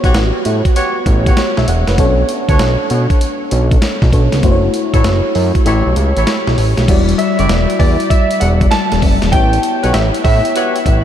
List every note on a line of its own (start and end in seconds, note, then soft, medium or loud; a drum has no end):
0.00 1.94 B3 medium
0.00 1.94 F#4 medium
0.00 0.17 F#4 medium
0.00 1.95 G4 medium
0.00 0.17 G4 medium
0.00 1.37 C#5 medium
0.00 kick medium
0.00 closed hi-hat soft
0.04 0.13 B1 medium
0.04 0.17 B4 medium
0.04 0.17 C#5 medium
0.14 0.32 A1 medium
0.14 snare loud
0.14 closed hi-hat medium
0.45 0.62 A2 loud
0.45 closed hi-hat medium
0.65 kick medium
0.65 closed hi-hat soft
0.75 0.97 F#4 medium
0.75 0.97 G4 medium
0.75 0.97 B4 medium
0.75 0.97 C#5 medium
0.75 closed hi-hat medium
1.06 1.32 A1 medium
1.06 kick loud
1.06 closed hi-hat medium
1.26 1.39 F#4 medium
1.26 1.39 G4 medium
1.26 1.39 B4 medium
1.26 1.39 C#5 medium
1.26 kick loud
1.26 closed hi-hat medium
1.37 1.57 C#5 medium
1.37 snare loud
1.37 closed hi-hat medium
1.57 1.66 B1 medium
1.57 1.67 E5 medium
1.57 snare medium
1.68 1.85 E1 medium
1.68 1.87 F#5 medium
1.68 closed hi-hat medium
1.88 1.97 F#1 medium
1.88 2.17 B4 medium
1.88 snare medium
1.88 closed hi-hat soft
1.98 2.24 B1 loud
1.98 4.08 B3 medium
1.98 2.07 C#4 medium
1.98 4.09 A4 medium
1.98 4.09 C#5 medium
1.98 kick loud
1.98 closed hi-hat medium
2.05 4.12 D4 medium
2.29 closed hi-hat medium
2.49 2.58 D2 medium
2.49 2.62 D4 medium
2.49 2.62 A4 medium
2.49 2.62 B4 medium
2.49 2.62 C#5 medium
2.49 kick loud
2.49 closed hi-hat soft
2.59 2.77 B1 medium
2.59 snare loud
2.59 closed hi-hat medium
2.90 3.07 B2 loud
2.90 closed hi-hat medium
3.10 kick medium
3.10 closed hi-hat soft
3.21 closed hi-hat medium
3.51 3.77 B1 loud
3.51 closed hi-hat medium
3.71 kick loud
3.71 closed hi-hat medium
3.82 snare loud
3.82 closed hi-hat medium
4.02 4.11 B1 medium
4.02 kick loud
4.02 snare medium
4.13 4.30 B1 medium
4.13 4.43 B3 medium
4.13 4.43 D4 medium
4.13 4.44 A4 medium
4.13 4.44 C#5 medium
4.13 kick medium
4.13 closed hi-hat medium
4.32 4.42 C#2 medium
4.32 snare medium
4.32 closed hi-hat medium
4.42 4.69 F#1 loud
4.42 5.63 A3 medium
4.42 5.63 E4 medium
4.42 5.64 F#4 medium
4.42 4.53 C5 medium
4.42 kick loud
4.42 closed hi-hat medium
4.51 5.66 C#5 medium
4.74 closed hi-hat medium
4.93 5.03 A1 medium
4.93 5.06 E4 medium
4.93 5.06 F#4 medium
4.93 5.07 A4 medium
4.93 5.07 C#5 medium
4.93 kick medium
4.93 closed hi-hat medium
5.04 5.22 F#1 medium
5.04 snare loud
5.04 closed hi-hat medium
5.35 5.52 F#2 loud
5.35 open hi-hat medium
5.55 kick medium
5.55 closed hi-hat soft
5.65 5.83 A1 loud
5.65 6.85 A3 medium
5.65 5.87 E4 medium
5.65 6.86 E4 medium
5.65 5.87 G4 medium
5.65 6.86 G4 medium
5.65 5.87 A4 medium
5.65 5.87 C#5 medium
5.65 6.87 C#5 medium
5.65 closed hi-hat medium
5.86 5.95 B1 medium
5.96 6.13 C#2 medium
5.96 closed hi-hat medium
6.16 6.25 A1 medium
6.16 6.29 E4 medium
6.16 6.29 G4 medium
6.16 6.29 A4 medium
6.16 6.29 C#5 medium
6.16 closed hi-hat soft
6.27 snare loud
6.27 closed hi-hat medium
6.47 6.56 B1 medium
6.47 snare medium
6.58 6.75 A1 medium
6.58 open hi-hat medium
6.78 6.87 B1 medium
6.78 snare medium
6.78 closed hi-hat soft
6.88 7.14 E1 loud
6.88 9.29 G3 medium
6.88 9.29 E4 medium
6.88 9.30 F#4 medium
6.88 9.30 D5 medium
6.88 kick loud
6.88 closed hi-hat medium
6.88 crash medium
7.09 closed hi-hat soft
7.18 7.82 E5 medium
7.18 closed hi-hat medium
7.38 7.48 F#1 medium
7.38 7.51 E4 medium
7.38 7.51 F#4 medium
7.38 7.51 G4 medium
7.38 7.52 D5 medium
7.38 closed hi-hat soft
7.49 7.67 E1 medium
7.49 snare loud
7.49 closed hi-hat medium
7.70 closed hi-hat soft
7.79 7.97 E2 medium
7.79 8.11 D5 medium
7.79 kick loud
7.79 open hi-hat medium
8.00 closed hi-hat soft
8.10 8.42 E5 loud
8.10 kick medium
8.10 closed hi-hat medium
8.31 closed hi-hat medium
8.40 8.67 E1 loud
8.40 8.47 F#5 loud
8.40 closed hi-hat medium
8.61 kick loud
8.61 closed hi-hat medium
8.71 9.34 A5 loud
8.71 snare loud
8.71 closed hi-hat medium
8.92 9.01 E1 medium
8.92 snare medium
8.92 closed hi-hat medium
9.02 9.19 F#1 medium
9.02 kick medium
9.02 open hi-hat medium
9.22 9.31 E1 medium
9.22 snare medium
9.22 closed hi-hat medium
9.32 9.59 A1 loud
9.32 11.04 B3 medium
9.32 11.04 E4 medium
9.32 11.04 G4 medium
9.32 11.04 C#5 medium
9.32 9.96 G5 loud
9.32 kick loud
9.32 closed hi-hat medium
9.53 closed hi-hat soft
9.63 closed hi-hat medium
9.83 9.93 B1 medium
9.83 9.96 F#4 medium
9.83 9.96 G4 medium
9.83 9.96 B4 medium
9.83 9.96 C#5 medium
9.83 closed hi-hat soft
9.93 10.11 A1 loud
9.93 10.00 E5 medium
9.93 snare loud
9.93 closed hi-hat medium
10.14 closed hi-hat soft
10.24 10.42 A2 loud
10.24 11.04 E5 loud
10.24 kick medium
10.24 open hi-hat medium
10.45 closed hi-hat medium
10.55 10.76 F#4 medium
10.55 10.77 G4 medium
10.55 10.77 B4 medium
10.55 10.77 C#5 medium
10.55 closed hi-hat medium
10.76 closed hi-hat medium
10.86 11.04 A1 medium
10.86 kick medium
10.86 closed hi-hat medium